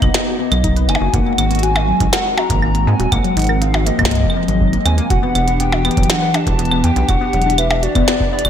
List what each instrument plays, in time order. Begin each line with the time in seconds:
Already playing: analog synth pad A#3 B3 D#4, soft synth lead D#5
0.02 analog synth bass B1, synth pluck B3, kick, closed hi-hat, claves
0.14 synth pluck B3, snare, closed hi-hat
0.27 synth pluck F#4
0.39 synth pluck B3, soft synth lead D#5
0.51 analog synth bass B1, synth pluck F#3, closed hi-hat, claves
0.64 synth pluck D#4, kick, closed hi-hat
0.76 synth pluck B4, closed hi-hat
0.88 analog synth bass F#1, synth pluck D#4, soft synth lead G#5, closed hi-hat, claves
0.95 percussion blips
1.01 analog synth bass F#1, synth pluck F#4
1.13 analog synth bass G#1, analog synth pad G#3 C4 F#4, synth pluck A#3, soft synth lead F#5, kick, closed hi-hat
1.26 synth pluck A#3
1.38 analog synth bass G#1, synth pluck A#3, closed hi-hat, claves
1.51 synth pluck A#3, closed hi-hat
1.55 closed hi-hat
1.59 soft synth lead G#5, closed hi-hat
1.63 synth pluck F#4, closed hi-hat
1.75 synth pluck A#3, percussion blips, claves
1.88 synth pluck F#3
2.00 analog synth bass G#1, synth pluck D#4, kick, closed hi-hat
2.13 synth pluck A#4, soft synth lead F#5, snare, closed hi-hat
2.25 synth pluck D#4
2.37 synth pluck F#4, soft synth lead A#5, percussion blips
2.50 analog synth bass G#1, synth pluck A#3, kick, closed hi-hat
2.62 synth pluck A#3, claves
2.75 synth pluck A#3, closed hi-hat
2.87 analog synth bass G#2, synth pluck A#3, soft synth lead G#5
2.99 analog synth bass D#1, synth pluck F#4, closed hi-hat
3.11 analog synth bass G#1, analog synth pad F3, synth pluck A#3, soft synth lead F#5, kick, closed hi-hat, claves
3.24 synth pluck F#3, closed hi-hat
3.37 analog synth bass G#1, synth pluck D#4, closed hi-hat
3.39 closed hi-hat
3.42 closed hi-hat
3.44 closed hi-hat
3.49 synth pluck A#4, claves
3.61 synth pluck D#4, soft synth lead F5, closed hi-hat
3.74 synth pluck F#4, percussion blips
3.86 synth pluck A#3, soft synth lead D#5, closed hi-hat
3.99 analog synth bass G#1, synth pluck A#3, kick, closed hi-hat, claves
4.02 kick
4.05 kick, snare, closed hi-hat
4.08 synth pluck A#3, kick
4.11 kick, closed hi-hat
4.14 kick, closed hi-hat
4.17 kick
4.20 synth pluck A#3, kick
4.24 kick
4.30 claves
4.36 synth pluck A#3, soft synth lead D#5
4.48 analog synth bass G#1, synth pluck F#3, closed hi-hat
4.61 synth pluck F#3, kick
4.73 synth pluck A#3, closed hi-hat
4.85 analog synth bass D#2, synth pluck C4, soft synth lead G#5, closed hi-hat, claves
4.98 synth pluck A#3, closed hi-hat
5.10 analog synth bass E1, analog synth pad E3 D4 G4, synth pluck F#4, soft synth lead F#5, kick, closed hi-hat
5.23 synth pluck B3
5.35 analog synth bass E1, synth pluck B3, closed hi-hat, claves
5.48 synth pluck B3, closed hi-hat
5.60 synth pluck B3, soft synth lead G5, closed hi-hat
5.72 synth pluck F#4, percussion blips
5.85 synth pluck B3, closed hi-hat, claves
5.91 closed hi-hat
5.97 analog synth bass E1, synth pluck F#3, kick, closed hi-hat
6.03 closed hi-hat
6.09 synth pluck D4, soft synth lead F#5, snare, closed hi-hat
6.22 synth pluck B4
6.34 synth pluck D4, soft synth lead A5, closed hi-hat, percussion blips
6.47 analog synth bass E1, synth pluck F#4, kick, closed hi-hat
6.59 synth pluck B3, closed hi-hat
6.65 closed hi-hat
6.71 synth pluck B3, claves
6.83 analog synth bass E2, synth pluck B3, soft synth lead G5, closed hi-hat
6.96 analog synth bass B1, synth pluck B3, closed hi-hat
7.08 analog synth bass E1, synth pluck F#4, soft synth lead F#5, kick, closed hi-hat, claves
7.21 synth pluck B3
7.33 analog synth bass E1, synth pluck F#3, closed hi-hat
7.42 closed hi-hat
7.46 synth pluck D4
7.50 closed hi-hat
7.58 synth pluck B4, soft synth lead E5, closed hi-hat, claves
7.70 synth pluck D4, percussion blips
7.83 synth pluck F#4, soft synth lead D5, closed hi-hat
7.95 analog synth bass E1, synth pluck B3, kick, closed hi-hat, claves
8.08 synth pluck B3, snare, closed hi-hat
8.20 synth pluck B3, kick
8.32 synth pluck B3, soft synth lead D5
8.39 closed hi-hat
8.45 analog synth bass E1, synth pluck F#4, closed hi-hat, claves